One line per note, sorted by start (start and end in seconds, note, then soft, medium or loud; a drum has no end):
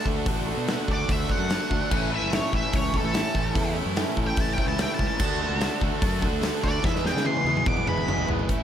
0.00 0.27 D3 medium
0.00 0.28 A3 medium
0.00 0.27 D4 medium
0.00 0.28 F#4 medium
0.05 0.23 D2 medium
0.05 0.24 D3 medium
0.05 0.26 A3 medium
0.05 0.26 D4 medium
0.05 0.26 F#4 medium
0.05 0.28 A4 medium
0.05 kick medium
0.25 0.52 A1 loud
0.25 0.45 D3 loud
0.25 0.47 A3 medium
0.25 0.47 D4 medium
0.25 0.47 F#4 loud
0.25 0.49 A4 loud
0.25 kick loud
0.25 open hi-hat medium
0.47 0.67 D3 medium
0.47 0.68 A3 medium
0.47 0.68 D4 medium
0.47 0.69 F#4 medium
0.47 0.70 A4 medium
0.57 0.75 B2 medium
0.68 0.87 D3 medium
0.68 0.89 A3 medium
0.68 0.89 D4 medium
0.68 0.89 F#4 loud
0.68 0.91 A4 loud
0.68 snare loud
0.68 open hi-hat medium
0.88 1.05 D2 medium
0.88 1.08 D3 medium
0.88 1.10 A3 medium
0.88 1.09 D4 medium
0.88 1.10 F#4 loud
0.88 1.11 A4 loud
0.88 1.10 D5 medium
0.88 kick medium
1.08 1.26 D2 medium
1.08 1.28 D3 medium
1.08 1.29 A3 medium
1.08 1.29 D4 medium
1.08 1.30 F#4 medium
1.08 1.31 A4 medium
1.08 kick loud
1.08 open hi-hat medium
1.12 1.31 E5 medium
1.29 1.48 D3 medium
1.29 1.50 A3 medium
1.29 1.49 D4 medium
1.29 1.50 F#4 loud
1.29 1.51 A4 loud
1.29 2.10 F#5 medium
1.29 kick medium
1.38 1.56 F#2 medium
1.50 1.70 D3 medium
1.50 1.71 A3 medium
1.50 1.71 D4 medium
1.50 1.71 F#4 medium
1.50 1.73 A4 medium
1.50 snare loud
1.50 open hi-hat medium
1.71 1.79 D2 medium
1.71 1.90 D3 medium
1.71 1.91 A3 medium
1.71 1.91 D4 medium
1.71 1.91 F#4 medium
1.71 1.93 A4 medium
1.71 kick medium
1.90 2.17 A1 loud
1.90 2.10 A2 medium
1.90 2.11 E3 loud
1.90 2.11 A3 medium
1.90 2.12 C#4 loud
1.90 2.12 E4 medium
1.90 2.12 A4 loud
1.90 kick loud
1.90 crash medium
2.10 2.30 A2 medium
2.10 2.30 E3 medium
2.10 2.31 A3 medium
2.10 2.32 C#4 medium
2.10 2.32 E4 medium
2.10 2.32 A4 medium
2.15 2.33 E5 medium
2.22 2.39 F#1 medium
2.30 2.50 A2 medium
2.30 2.51 E3 medium
2.30 2.51 A3 medium
2.30 2.52 C#4 medium
2.30 2.52 E4 medium
2.30 2.52 A4 medium
2.30 snare loud
2.30 open hi-hat medium
2.35 2.54 C#5 medium
2.51 2.61 A1 loud
2.51 2.71 A2 medium
2.51 2.72 E3 medium
2.51 2.73 A3 medium
2.51 2.73 C#4 medium
2.51 2.73 E4 medium
2.51 2.74 A4 medium
2.51 kick medium
2.56 2.74 E5 medium
2.72 2.99 C#2 medium
2.72 2.91 A2 medium
2.72 2.92 E3 medium
2.72 2.93 A3 medium
2.72 2.93 C#4 medium
2.72 2.94 E4 medium
2.72 2.95 A4 medium
2.72 kick loud
2.72 open hi-hat medium
2.76 2.95 C#5 medium
2.91 3.12 A2 medium
2.91 3.13 E3 medium
2.91 3.14 A3 loud
2.91 3.14 C#4 loud
2.91 3.13 E4 medium
2.91 kick medium
2.95 3.15 E4 loud
2.95 3.16 A4 loud
2.95 3.75 A4 loud
3.03 3.21 A1 medium
3.13 3.33 A2 medium
3.13 3.33 E3 medium
3.13 3.34 A3 medium
3.13 3.35 C#4 medium
3.13 3.35 E4 medium
3.13 3.36 A4 medium
3.13 snare loud
3.13 open hi-hat medium
3.34 3.52 A1 medium
3.34 3.52 A2 medium
3.34 3.53 E3 medium
3.34 3.54 A3 medium
3.34 3.54 C#4 medium
3.34 3.55 E4 medium
3.34 3.56 A4 medium
3.34 kick medium
3.54 3.81 E2 loud
3.54 3.74 A2 medium
3.54 3.74 E3 loud
3.54 3.75 A3 loud
3.54 3.75 C#4 loud
3.54 3.75 E4 loud
3.54 3.77 A4 loud
3.54 kick loud
3.54 open hi-hat medium
3.75 3.93 A2 medium
3.75 3.94 E3 medium
3.75 3.96 A3 medium
3.75 3.96 C#4 loud
3.75 3.96 E4 medium
3.75 3.97 A4 medium
3.86 4.03 F#2 medium
3.95 4.15 A2 medium
3.95 4.16 E3 medium
3.95 4.17 A3 medium
3.95 4.16 C#4 loud
3.95 4.17 E4 medium
3.95 4.19 A4 loud
3.95 snare loud
3.95 open hi-hat medium
4.16 4.34 A1 medium
4.16 4.35 A2 medium
4.16 4.35 E3 medium
4.16 4.36 A3 medium
4.16 4.37 C#4 medium
4.16 4.37 E4 medium
4.16 4.38 A4 medium
4.16 kick medium
4.27 4.40 G5 loud
4.36 4.55 A1 loud
4.36 4.56 A2 medium
4.36 4.57 E3 medium
4.36 4.57 A3 medium
4.36 4.58 C#4 medium
4.36 4.58 E4 medium
4.36 4.59 A4 medium
4.36 kick loud
4.36 open hi-hat medium
4.40 4.53 A5 medium
4.53 4.77 A2 medium
4.53 4.66 G5 medium
4.58 4.78 E3 medium
4.58 4.78 A3 loud
4.58 4.78 C#4 loud
4.58 4.79 E4 loud
4.58 4.80 A4 loud
4.58 kick medium
4.66 4.85 C#2 medium
4.66 4.80 A5 loud
4.78 4.97 A2 medium
4.78 4.98 E3 medium
4.78 4.98 A3 loud
4.78 4.99 C#4 medium
4.78 5.00 E4 medium
4.78 5.00 A4 medium
4.78 4.94 G5 medium
4.78 snare loud
4.78 open hi-hat medium
4.94 5.06 A5 medium
4.98 5.08 C#2 medium
4.98 5.18 A2 medium
4.98 5.18 E3 medium
4.98 5.18 A3 medium
4.98 5.19 C#4 medium
4.98 5.20 E4 medium
4.98 5.19 A4 medium
4.98 kick medium
5.07 6.26 A5 loud
5.19 5.45 D2 loud
5.19 5.38 D3 loud
5.19 5.38 A3 loud
5.19 5.39 D4 loud
5.19 5.40 F#4 loud
5.19 5.40 A4 loud
5.19 kick loud
5.19 crash loud
5.39 5.58 D3 medium
5.39 5.59 A3 medium
5.39 5.60 D4 medium
5.39 5.60 F#4 medium
5.39 5.60 A4 loud
5.49 5.67 C#2 medium
5.59 5.79 D3 medium
5.59 5.79 A3 medium
5.59 5.80 D4 loud
5.59 5.80 F#4 loud
5.59 5.81 A4 loud
5.59 snare loud
5.59 open hi-hat medium
5.80 5.90 D2 loud
5.80 5.99 D3 medium
5.80 6.00 A3 medium
5.80 6.00 D4 loud
5.80 6.01 F#4 loud
5.80 6.01 A4 loud
5.80 kick medium
6.00 6.27 F#2 medium
6.00 6.20 D3 medium
6.00 6.20 A3 medium
6.00 6.21 D4 medium
6.00 6.21 F#4 loud
6.00 6.22 A4 loud
6.00 kick loud
6.00 open hi-hat medium
6.21 6.40 D3 loud
6.21 6.41 A3 medium
6.21 6.41 D4 loud
6.21 6.42 F#4 loud
6.21 6.42 A4 medium
6.21 kick medium
6.31 6.49 D2 loud
6.41 6.61 D3 medium
6.41 6.61 A3 medium
6.41 6.62 D4 medium
6.41 6.63 F#4 medium
6.41 6.63 A4 medium
6.41 snare loud
6.41 open hi-hat medium
6.62 6.81 D2 medium
6.62 6.81 D3 medium
6.62 6.83 A3 medium
6.62 6.83 D4 loud
6.62 6.83 F#4 loud
6.62 6.83 A4 medium
6.62 6.84 D5 medium
6.62 kick medium
6.82 7.10 E2 loud
6.82 7.03 E2 medium
6.82 7.03 B2 loud
6.82 7.03 E3 loud
6.82 7.03 G#3 loud
6.82 7.04 B3 loud
6.82 7.04 E4 loud
6.82 7.05 E5 loud
6.82 kick loud
6.82 snare medium
6.86 7.04 E3 loud
6.86 7.05 G#4 loud
6.95 snare medium
7.04 7.22 E2 medium
7.04 7.23 B2 medium
7.04 7.23 E3 medium
7.04 7.24 G#3 medium
7.04 7.24 B3 medium
7.04 7.25 E4 medium
7.04 7.25 G#4 loud
7.04 7.26 G5 medium
7.04 snare medium
7.14 7.32 C#3 medium
7.14 snare medium
7.24 7.44 E2 loud
7.24 7.45 B2 loud
7.24 7.43 E3 medium
7.24 7.44 G#3 medium
7.24 7.44 B3 loud
7.24 7.45 E4 loud
7.24 7.47 G#4 loud
7.24 7.66 C6 loud
7.24 high tom medium
7.37 high tom medium
7.44 7.62 E2 medium
7.44 7.65 E2 medium
7.44 7.65 B2 medium
7.44 7.64 E3 medium
7.44 7.65 G#3 medium
7.44 7.65 B3 medium
7.44 7.66 E4 loud
7.44 7.67 G#4 medium
7.44 high tom medium
7.57 mid tom medium
7.65 7.83 E2 loud
7.65 7.86 E2 medium
7.65 7.86 B2 medium
7.65 7.85 E3 medium
7.65 7.86 G#3 medium
7.65 7.86 B3 medium
7.65 7.87 E4 loud
7.65 7.88 G#4 medium
7.65 7.87 D6 medium
7.65 kick loud
7.65 mid tom medium
7.77 mid tom medium
7.86 8.05 E1 medium
7.86 8.06 E2 loud
7.86 8.07 B2 medium
7.86 8.06 E3 medium
7.86 8.06 G#3 medium
7.86 8.06 B3 loud
7.86 8.08 E4 loud
7.86 8.08 G#4 loud
7.86 8.28 B5 loud
7.86 mid tom medium
7.91 8.07 E3 medium
7.98 mid tom medium
8.07 8.26 F#1 medium
8.07 8.27 E2 medium
8.07 8.28 B2 medium
8.07 8.26 E3 medium
8.07 8.27 G#3 medium
8.07 8.28 B3 medium
8.07 8.29 E4 loud
8.07 8.30 G#4 loud
8.07 mid tom loud
8.18 floor tom medium
8.28 8.47 G#1 medium
8.28 8.48 E2 medium
8.28 8.48 B2 medium
8.28 8.48 E3 medium
8.28 8.48 G#3 medium
8.28 8.48 B3 medium
8.28 8.49 E4 loud
8.28 8.49 G#4 medium
8.28 floor tom loud
8.39 floor tom medium
8.49 8.63 A1 medium
8.49 8.63 A2 medium
8.49 8.63 E3 medium
8.49 8.63 A3 medium
8.49 8.63 C#4 medium
8.49 8.63 E4 medium
8.49 kick loud
8.49 closed hi-hat medium